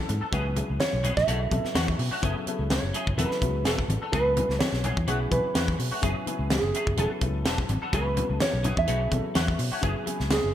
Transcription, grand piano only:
Already playing: C#3 F#3 B3 E4 A4
0.31 C#3 F#3 B3 E4 G#4
0.55 C#3 F#3 B3 E4 G#4
1.27 C#3 F#3 B3 E4 A4
1.50 C#3 F#3 B3 E4 A4
2.22 C#3 F#3 B3 E4 A4
2.46 C#3 F#3 B3 E4 A4
3.17 C#3 F#3 B3 E4 A4
3.41 C#3 F#3 B3 E4 F#4
4.12 C#3 F#3 B3 E4 G#4
4.35 C#3 F#3 B3 E4 G#4
5.07 C#3 F#3 B3 E4 G#4
5.30 C#3 F#3 B3 E4 G#4
6.01 C#3 F#3 B3 E4 G#4
6.25 C#3 F#3 B3 E4 G#4
6.96 C#3 F#3 B3 E4 A4
7.20 C#3 F#3 B3 E4 A4
7.92 C#3 F#3 B3 E4 G#4
8.15 C#3 F#3 B3 E4 F#4
8.86 C#3 F#3 B3 E4 G#4
9.10 C#3 F#3 B3 E4 A4
9.81 C#3 F#3 B3 E4 G#4
10.05 C#3 F#3 B3 E4 G#4

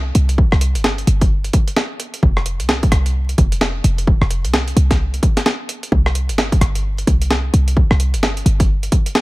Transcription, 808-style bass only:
Already playing: C2
0.15 C2
0.52 C2
0.75 G1
1.07 G1
2.23 F1
2.60 C2
2.92 C2
3.38 F1
3.84 F1
4.21 F1
4.44 C2
4.76 C2
5.92 C2
6.29 G1
6.61 G1
7.07 C2
7.54 C2
7.91 C2
8.14 G1
8.46 G1

